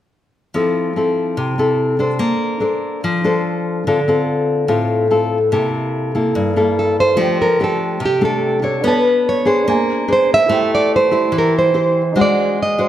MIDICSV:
0, 0, Header, 1, 4, 480
1, 0, Start_track
1, 0, Key_signature, -1, "major"
1, 0, Tempo, 414938
1, 624, Time_signature, 4, 2, 24, 8
1, 14905, End_track
2, 0, Start_track
2, 0, Title_t, "Nylon-string guitar"
2, 0, Program_c, 0, 24
2, 7856, Note_on_c, 0, 69, 71
2, 8085, Note_off_c, 0, 69, 0
2, 8101, Note_on_c, 0, 72, 85
2, 8575, Note_off_c, 0, 72, 0
2, 8580, Note_on_c, 0, 70, 76
2, 8785, Note_off_c, 0, 70, 0
2, 8836, Note_on_c, 0, 69, 80
2, 9302, Note_off_c, 0, 69, 0
2, 9318, Note_on_c, 0, 67, 78
2, 9515, Note_off_c, 0, 67, 0
2, 9543, Note_on_c, 0, 69, 81
2, 10196, Note_off_c, 0, 69, 0
2, 10271, Note_on_c, 0, 71, 84
2, 10739, Note_off_c, 0, 71, 0
2, 10745, Note_on_c, 0, 73, 89
2, 11171, Note_off_c, 0, 73, 0
2, 11714, Note_on_c, 0, 72, 88
2, 11933, Note_off_c, 0, 72, 0
2, 11962, Note_on_c, 0, 76, 101
2, 12425, Note_off_c, 0, 76, 0
2, 12432, Note_on_c, 0, 74, 87
2, 12631, Note_off_c, 0, 74, 0
2, 12678, Note_on_c, 0, 72, 87
2, 13144, Note_off_c, 0, 72, 0
2, 13169, Note_on_c, 0, 70, 81
2, 13361, Note_off_c, 0, 70, 0
2, 13402, Note_on_c, 0, 72, 78
2, 14113, Note_off_c, 0, 72, 0
2, 14129, Note_on_c, 0, 74, 80
2, 14589, Note_off_c, 0, 74, 0
2, 14605, Note_on_c, 0, 75, 81
2, 14905, Note_off_c, 0, 75, 0
2, 14905, End_track
3, 0, Start_track
3, 0, Title_t, "Grand piano"
3, 0, Program_c, 1, 0
3, 8274, Note_on_c, 1, 65, 43
3, 8298, Note_on_c, 1, 69, 41
3, 8320, Note_on_c, 1, 74, 43
3, 8347, Note_on_c, 1, 79, 46
3, 8536, Control_c, 1, 64, 127
3, 10168, Note_off_c, 1, 65, 0
3, 10181, Note_off_c, 1, 69, 0
3, 10192, Note_off_c, 1, 74, 0
3, 10195, Note_on_c, 1, 62, 45
3, 10206, Note_off_c, 1, 79, 0
3, 10218, Note_on_c, 1, 71, 42
3, 10237, Control_c, 1, 64, 0
3, 10244, Note_on_c, 1, 73, 42
3, 10265, Note_on_c, 1, 81, 49
3, 10415, Control_c, 1, 64, 127
3, 11133, Note_off_c, 1, 62, 0
3, 11150, Note_on_c, 1, 62, 50
3, 11160, Note_off_c, 1, 71, 0
3, 11173, Note_off_c, 1, 73, 0
3, 11180, Note_on_c, 1, 70, 44
3, 11184, Note_off_c, 1, 81, 0
3, 11195, Control_c, 1, 64, 0
3, 11196, Note_on_c, 1, 72, 45
3, 11217, Note_on_c, 1, 80, 57
3, 11411, Control_c, 1, 64, 127
3, 12101, Note_on_c, 1, 64, 47
3, 12106, Note_off_c, 1, 62, 0
3, 12121, Note_off_c, 1, 70, 0
3, 12125, Note_on_c, 1, 69, 44
3, 12129, Note_off_c, 1, 72, 0
3, 12140, Note_off_c, 1, 80, 0
3, 12149, Note_on_c, 1, 72, 41
3, 12157, Control_c, 1, 64, 0
3, 12171, Note_on_c, 1, 79, 51
3, 12390, Control_c, 1, 64, 127
3, 14003, Note_off_c, 1, 64, 0
3, 14016, Note_off_c, 1, 69, 0
3, 14020, Note_on_c, 1, 63, 44
3, 14028, Note_off_c, 1, 72, 0
3, 14039, Note_off_c, 1, 79, 0
3, 14039, Note_on_c, 1, 68, 41
3, 14071, Note_on_c, 1, 72, 43
3, 14075, Control_c, 1, 64, 0
3, 14091, Note_on_c, 1, 78, 51
3, 14293, Control_c, 1, 64, 127
3, 14905, Note_off_c, 1, 63, 0
3, 14905, Note_off_c, 1, 68, 0
3, 14905, Note_off_c, 1, 72, 0
3, 14905, Note_off_c, 1, 78, 0
3, 14905, End_track
4, 0, Start_track
4, 0, Title_t, "Nylon-string guitar"
4, 0, Program_c, 2, 24
4, 627, Note_on_c, 2, 53, 60
4, 633, Note_on_c, 2, 60, 53
4, 639, Note_on_c, 2, 64, 50
4, 642, Note_on_c, 2, 69, 57
4, 1070, Note_off_c, 2, 60, 0
4, 1073, Note_off_c, 2, 64, 0
4, 1073, Note_off_c, 2, 69, 0
4, 1112, Note_on_c, 2, 60, 46
4, 1117, Note_on_c, 2, 64, 45
4, 1124, Note_on_c, 2, 69, 49
4, 1561, Note_off_c, 2, 53, 0
4, 1586, Note_on_c, 2, 48, 59
4, 1791, Note_off_c, 2, 60, 0
4, 1791, Note_off_c, 2, 64, 0
4, 1792, Note_off_c, 2, 69, 0
4, 1827, Note_on_c, 2, 60, 53
4, 1839, Note_on_c, 2, 64, 58
4, 1842, Note_on_c, 2, 69, 65
4, 2269, Note_off_c, 2, 60, 0
4, 2270, Note_off_c, 2, 69, 0
4, 2271, Note_off_c, 2, 64, 0
4, 2301, Note_on_c, 2, 62, 54
4, 2308, Note_on_c, 2, 69, 51
4, 2315, Note_on_c, 2, 72, 57
4, 2521, Note_off_c, 2, 48, 0
4, 2536, Note_on_c, 2, 58, 65
4, 2983, Note_off_c, 2, 62, 0
4, 2987, Note_off_c, 2, 69, 0
4, 2990, Note_off_c, 2, 72, 0
4, 3010, Note_on_c, 2, 62, 49
4, 3018, Note_on_c, 2, 69, 47
4, 3029, Note_on_c, 2, 72, 50
4, 3475, Note_off_c, 2, 58, 0
4, 3516, Note_on_c, 2, 53, 66
4, 3698, Note_off_c, 2, 62, 0
4, 3702, Note_off_c, 2, 69, 0
4, 3707, Note_off_c, 2, 72, 0
4, 3751, Note_on_c, 2, 62, 58
4, 3756, Note_on_c, 2, 69, 58
4, 3763, Note_on_c, 2, 72, 64
4, 4428, Note_off_c, 2, 62, 0
4, 4431, Note_off_c, 2, 69, 0
4, 4434, Note_off_c, 2, 72, 0
4, 4445, Note_off_c, 2, 53, 0
4, 4477, Note_on_c, 2, 50, 63
4, 4478, Note_on_c, 2, 65, 55
4, 4480, Note_on_c, 2, 60, 52
4, 4488, Note_on_c, 2, 69, 55
4, 4610, Note_off_c, 2, 65, 0
4, 4613, Note_off_c, 2, 60, 0
4, 4615, Note_off_c, 2, 69, 0
4, 4717, Note_on_c, 2, 60, 59
4, 4726, Note_on_c, 2, 65, 58
4, 4728, Note_on_c, 2, 69, 59
4, 5392, Note_off_c, 2, 60, 0
4, 5394, Note_off_c, 2, 65, 0
4, 5396, Note_off_c, 2, 69, 0
4, 5406, Note_off_c, 2, 50, 0
4, 5417, Note_on_c, 2, 45, 62
4, 5419, Note_on_c, 2, 60, 51
4, 5422, Note_on_c, 2, 65, 49
4, 5423, Note_on_c, 2, 69, 55
4, 5861, Note_off_c, 2, 60, 0
4, 5864, Note_off_c, 2, 65, 0
4, 5864, Note_off_c, 2, 69, 0
4, 5903, Note_on_c, 2, 60, 49
4, 5907, Note_on_c, 2, 65, 49
4, 5913, Note_on_c, 2, 69, 53
4, 6212, Note_off_c, 2, 60, 0
4, 6214, Note_off_c, 2, 65, 0
4, 6216, Note_off_c, 2, 69, 0
4, 6355, Note_off_c, 2, 45, 0
4, 6385, Note_on_c, 2, 48, 62
4, 6388, Note_on_c, 2, 58, 51
4, 6394, Note_on_c, 2, 69, 52
4, 6396, Note_on_c, 2, 64, 51
4, 7065, Note_off_c, 2, 58, 0
4, 7069, Note_off_c, 2, 69, 0
4, 7071, Note_off_c, 2, 64, 0
4, 7111, Note_on_c, 2, 58, 54
4, 7119, Note_on_c, 2, 64, 52
4, 7120, Note_on_c, 2, 69, 55
4, 7320, Note_off_c, 2, 48, 0
4, 7348, Note_on_c, 2, 43, 62
4, 7548, Note_off_c, 2, 58, 0
4, 7551, Note_off_c, 2, 69, 0
4, 7553, Note_off_c, 2, 64, 0
4, 7592, Note_on_c, 2, 58, 56
4, 7597, Note_on_c, 2, 64, 57
4, 7601, Note_on_c, 2, 69, 60
4, 8280, Note_off_c, 2, 43, 0
4, 8281, Note_off_c, 2, 58, 0
4, 8285, Note_on_c, 2, 57, 54
4, 8290, Note_off_c, 2, 64, 0
4, 8291, Note_off_c, 2, 69, 0
4, 8291, Note_on_c, 2, 53, 66
4, 8299, Note_on_c, 2, 62, 55
4, 8302, Note_on_c, 2, 67, 56
4, 8602, Note_off_c, 2, 57, 0
4, 8610, Note_off_c, 2, 62, 0
4, 8610, Note_off_c, 2, 67, 0
4, 8784, Note_on_c, 2, 57, 53
4, 8792, Note_on_c, 2, 62, 55
4, 8800, Note_on_c, 2, 67, 58
4, 9232, Note_off_c, 2, 53, 0
4, 9255, Note_on_c, 2, 48, 64
4, 9259, Note_off_c, 2, 57, 0
4, 9264, Note_off_c, 2, 62, 0
4, 9265, Note_off_c, 2, 67, 0
4, 9498, Note_on_c, 2, 57, 60
4, 9505, Note_on_c, 2, 62, 57
4, 9505, Note_on_c, 2, 67, 62
4, 9942, Note_off_c, 2, 57, 0
4, 9943, Note_off_c, 2, 62, 0
4, 9944, Note_off_c, 2, 67, 0
4, 9973, Note_on_c, 2, 62, 56
4, 9980, Note_on_c, 2, 69, 53
4, 9990, Note_on_c, 2, 73, 68
4, 10194, Note_off_c, 2, 48, 0
4, 10223, Note_on_c, 2, 59, 69
4, 10898, Note_off_c, 2, 62, 0
4, 10903, Note_off_c, 2, 69, 0
4, 10905, Note_off_c, 2, 73, 0
4, 10935, Note_on_c, 2, 62, 58
4, 10941, Note_on_c, 2, 68, 55
4, 10950, Note_on_c, 2, 72, 64
4, 11158, Note_off_c, 2, 59, 0
4, 11193, Note_on_c, 2, 58, 66
4, 11620, Note_off_c, 2, 62, 0
4, 11622, Note_off_c, 2, 68, 0
4, 11627, Note_off_c, 2, 72, 0
4, 11662, Note_on_c, 2, 62, 51
4, 11666, Note_on_c, 2, 68, 50
4, 11666, Note_on_c, 2, 72, 59
4, 11984, Note_off_c, 2, 72, 0
4, 11985, Note_off_c, 2, 62, 0
4, 11985, Note_off_c, 2, 68, 0
4, 12123, Note_off_c, 2, 58, 0
4, 12139, Note_on_c, 2, 57, 68
4, 12140, Note_on_c, 2, 64, 56
4, 12141, Note_on_c, 2, 72, 61
4, 12142, Note_on_c, 2, 67, 55
4, 12822, Note_off_c, 2, 64, 0
4, 12822, Note_off_c, 2, 72, 0
4, 12823, Note_off_c, 2, 67, 0
4, 12856, Note_on_c, 2, 64, 61
4, 12863, Note_on_c, 2, 67, 55
4, 12870, Note_on_c, 2, 72, 68
4, 13077, Note_off_c, 2, 57, 0
4, 13094, Note_on_c, 2, 52, 65
4, 13540, Note_off_c, 2, 64, 0
4, 13544, Note_off_c, 2, 67, 0
4, 13547, Note_off_c, 2, 72, 0
4, 13581, Note_on_c, 2, 64, 49
4, 13586, Note_on_c, 2, 67, 47
4, 13590, Note_on_c, 2, 72, 54
4, 13891, Note_off_c, 2, 64, 0
4, 13893, Note_off_c, 2, 67, 0
4, 13894, Note_off_c, 2, 72, 0
4, 14035, Note_off_c, 2, 52, 0
4, 14062, Note_on_c, 2, 62, 54
4, 14063, Note_on_c, 2, 56, 66
4, 14069, Note_on_c, 2, 66, 59
4, 14079, Note_on_c, 2, 72, 65
4, 14539, Note_off_c, 2, 62, 0
4, 14543, Note_off_c, 2, 66, 0
4, 14548, Note_off_c, 2, 72, 0
4, 14786, Note_on_c, 2, 62, 59
4, 14791, Note_on_c, 2, 66, 61
4, 14797, Note_on_c, 2, 72, 66
4, 14905, Note_off_c, 2, 56, 0
4, 14905, Note_off_c, 2, 62, 0
4, 14905, Note_off_c, 2, 66, 0
4, 14905, Note_off_c, 2, 72, 0
4, 14905, End_track
0, 0, End_of_file